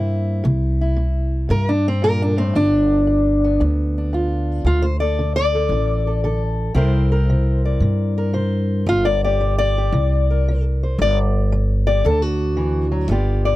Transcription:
0.00 0.41 G2 loud
0.00 0.42 C3 medium
0.00 0.44 A#3 soft
0.00 0.44 C4 soft
0.00 0.80 E4 soft
0.44 1.46 C2 loud
0.44 0.94 C3 medium
0.81 1.68 E4 medium
0.96 1.46 C3 medium
1.49 2.52 G2 loud
1.49 1.99 C3 medium
1.49 1.68 A#4 loud
1.69 1.86 D4 medium
1.88 2.04 C4 medium
2.02 2.36 A#2 medium
2.02 2.21 A#4 loud
2.22 2.39 D4 loud
2.36 2.55 A2 medium
2.36 2.56 C4 loud
2.54 3.57 G1 loud
2.54 3.04 G2 medium
2.54 3.61 D4 loud
3.07 3.57 G2 medium
3.44 4.65 B3 soft
3.60 4.62 D2 loud
3.60 4.10 G2 medium
3.98 4.65 D4 soft
4.13 4.62 G2 medium
4.13 4.64 F4 medium
4.65 5.67 D2 loud
4.65 5.15 D3 medium
4.65 4.84 F4 loud
4.82 5.00 C5 loud
5.00 5.54 A4 medium
5.00 5.35 D5 medium
5.19 5.68 D3 medium
5.36 6.41 D5 loud
5.55 6.06 A4 soft
5.69 6.72 A1 loud
5.69 6.21 D3 medium
6.07 6.23 A4 soft
6.24 6.73 D3 medium
6.24 6.75 A4 medium
6.74 7.77 C2 loud
6.74 7.25 C3 medium
6.74 8.85 C4 medium
6.74 8.85 E4 medium
6.74 7.11 A#4 medium
6.74 7.65 C5 medium
7.12 8.16 A#4 medium
7.30 7.79 C3 medium
7.65 8.34 D5 medium
7.80 8.83 G2 loud
7.80 8.31 C3 medium
8.18 8.86 A#4 medium
8.33 8.83 C3 medium
8.33 8.85 C5 medium
8.87 9.89 G1 loud
8.87 9.36 G3 medium
8.87 9.06 F4 loud
9.05 9.23 D5 loud
9.24 9.77 G4 medium
9.24 9.57 D5 medium
9.41 9.90 G3 medium
9.58 10.64 D5 loud
9.78 9.92 G4 medium
9.92 10.94 C2 loud
9.92 10.43 C3 medium
10.30 10.98 A#4 soft
10.48 10.97 C3 medium
10.83 10.98 C5 soft
10.98 12.00 G1 loud
10.98 11.48 G3 medium
10.98 11.18 D5 loud
11.52 12.01 G3 medium
11.87 12.03 G4 soft
11.87 12.05 D5 loud
12.04 13.07 D2 loud
12.04 12.54 D3 medium
12.04 13.09 D4 medium
12.04 12.22 A4 loud
12.22 13.11 F#4 loud
12.57 12.91 E3 medium
12.92 13.10 F#3 medium
13.09 13.56 G1 loud
13.09 13.56 G3 medium
13.09 13.56 B3 medium
13.09 13.56 F4 medium
13.09 13.56 G4 medium
13.09 13.44 D5 medium
13.45 13.56 D5 medium

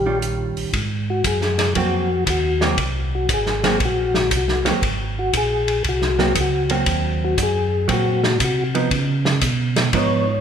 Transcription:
0.00 0.53 A#1 medium
0.00 0.19 G4 medium
0.06 0.70 D#3 soft
0.06 0.70 G3 medium
0.06 0.70 C#4 soft
0.06 0.71 F4 medium
0.22 closed hi-hat soft
0.57 0.65 A#1 soft
0.57 open hi-hat soft
0.73 1.23 G#2 medium
0.73 kick soft
0.73 ride medium
1.10 1.25 F#4 medium
1.24 1.74 F#2 medium
1.24 1.73 G#4 medium
1.24 kick soft
1.24 hi-hat pedal soft
1.24 ride medium
1.41 snare soft
1.58 snare soft
1.58 ride soft
1.75 2.25 F2 medium
1.75 2.07 F#3 medium
1.75 2.07 A#3 medium
1.75 2.07 C4 medium
1.75 2.24 F#4 medium
1.75 kick soft
1.75 ride medium
2.26 2.76 D#2 medium
2.26 2.62 F#4 medium
2.26 kick soft
2.26 hi-hat pedal medium
2.26 ride medium
2.61 2.76 F#3 medium
2.61 2.77 A#3 medium
2.61 2.77 C4 medium
2.61 snare soft
2.77 3.27 C2 medium
2.77 kick soft
2.77 ride medium
3.15 3.30 F#4 medium
3.29 3.78 G#1 medium
3.29 kick soft
3.29 hi-hat pedal medium
3.29 ride medium
3.33 3.79 G#4 medium
3.46 snare soft
3.64 3.79 F#3 medium
3.64 3.79 A#3 medium
3.64 3.79 C4 medium
3.64 snare soft
3.64 ride soft
3.80 4.30 A#1 medium
3.80 kick soft
3.80 ride medium
3.85 4.30 F#4 medium
4.14 snare soft
4.31 4.63 C2 medium
4.31 kick soft
4.31 hi-hat pedal medium
4.31 ride medium
4.37 4.68 F#4 medium
4.48 snare soft
4.64 4.73 C2 soft
4.64 4.80 F#3 medium
4.64 4.81 A#3 medium
4.64 4.81 C4 medium
4.64 snare soft
4.64 ride soft
4.82 5.31 G#1 medium
4.82 kick soft
4.82 ride medium
5.19 5.34 F#4 medium
5.33 5.83 A#1 medium
5.33 kick soft
5.33 hi-hat pedal soft
5.33 ride medium
5.37 5.83 G#4 medium
5.68 ride soft
5.84 6.34 C2 medium
5.84 kick soft
5.84 ride medium
5.89 6.34 F#4 medium
6.02 snare soft
6.19 6.34 F#3 medium
6.19 6.34 A#3 medium
6.19 6.34 C4 medium
6.19 snare soft
6.35 6.85 C#2 medium
6.35 kick soft
6.35 hi-hat pedal medium
6.35 ride medium
6.41 6.72 F#4 medium
6.70 7.35 F#3 soft
6.70 7.35 A#3 medium
6.70 7.35 C4 medium
6.70 ride soft
6.86 7.36 D#2 medium
6.86 kick soft
6.86 ride medium
7.25 7.39 F#4 medium
7.38 7.87 F#2 medium
7.38 kick soft
7.38 hi-hat pedal medium
7.38 ride medium
7.43 7.88 G#4 medium
7.88 8.38 A#2 medium
7.88 8.19 F#3 medium
7.88 8.20 A#3 medium
7.88 8.20 C4 medium
7.88 kick soft
7.88 ride medium
7.93 8.38 F#4 medium
8.24 snare soft
8.40 8.89 C3 medium
8.40 kick soft
8.40 hi-hat pedal soft
8.40 ride medium
8.44 8.64 F#4 medium
8.75 8.89 F3 medium
8.75 8.89 B3 medium
8.75 8.90 D#4 medium
8.75 ride soft
8.91 9.40 C#3 medium
8.91 kick soft
8.91 ride medium
9.25 snare soft
9.41 9.91 B2 medium
9.41 kick soft
9.41 hi-hat pedal soft
9.41 ride medium
9.76 snare medium
9.76 ride soft
9.93 10.41 G#2 medium
9.93 10.24 F3 medium
9.93 10.25 B3 medium
9.93 10.25 D#4 medium
9.93 10.41 C#5 medium
9.93 kick soft
9.93 ride medium

